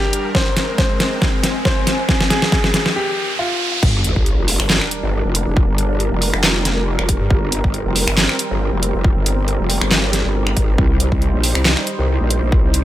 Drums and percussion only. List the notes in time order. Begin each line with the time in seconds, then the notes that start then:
0.13 closed hi-hat
0.35 kick, snare
0.57 snare, closed hi-hat
0.78 kick, snare, closed hi-hat
1.00 snare, closed hi-hat
1.22 kick, snare
1.44 snare, closed hi-hat
1.65 kick, snare
1.87 snare, closed hi-hat
2.09 kick, snare
2.21 snare
2.30 snare, closed hi-hat
2.42 snare
2.52 kick, snare, closed hi-hat
2.64 snare
2.74 snare, closed hi-hat
2.86 snare
3.83 kick, crash
4.04 closed hi-hat
4.16 kick
4.26 closed hi-hat
4.48 open hi-hat
4.60 finger snap
4.70 snare, clap
4.81 finger snap
4.91 closed hi-hat
5.35 closed hi-hat
5.57 kick
5.78 closed hi-hat
6.00 closed hi-hat
6.22 open hi-hat
6.34 finger snap
6.43 snare, clap
6.65 snare, closed hi-hat
6.99 finger snap
7.09 kick, closed hi-hat
7.30 kick
7.52 closed hi-hat
7.64 kick
7.74 closed hi-hat
7.96 open hi-hat
8.08 finger snap
8.17 snare, clap
8.29 finger snap
8.39 closed hi-hat
8.83 closed hi-hat
9.04 kick
9.26 closed hi-hat
9.48 closed hi-hat
9.70 open hi-hat
9.81 finger snap
9.91 snare, clap
10.13 snare, closed hi-hat
10.47 finger snap
10.57 kick, closed hi-hat
10.78 kick
11.00 closed hi-hat
11.12 kick
11.22 closed hi-hat
11.44 open hi-hat
11.55 finger snap
11.65 snare, clap
11.77 finger snap
11.87 closed hi-hat
12.30 closed hi-hat
12.52 kick
12.74 closed hi-hat